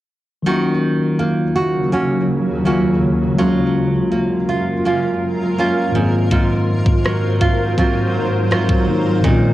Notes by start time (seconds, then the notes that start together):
0.42 D#2 C#3 D#3 F#3 A#3
0.46 C#4 F4 F#4
1.19 A#3
1.56 F#4
1.92 A#3 C#4 F#4
2.64 D#3 F#3 A#3 C#4 F4 F#4
3.35 F#2 F#3 G#3 F4 A#4
3.39 A#3 C#4 F4
4.12 A#3
4.49 F4
4.85 A#3 C#4 F4
5.58 A#3 C#4 F4
5.91 G#2 D#3 F#3 F4 C5
5.96 A#3 C4 F4
6.31 G#2 F4, kick
6.86 kick
7.05 F#3, cross-stick
7.41 F4, kick
7.78 F#3 C4 F4, kick
8.51 F#3 C4 F4, cross-stick
8.69 kick
8.86 G#2 D#3 F#3 A#3 C4
8.90 D#4
9.21 A#2 D#3 G#3, kick
9.25 C4 C#4 D#4 F4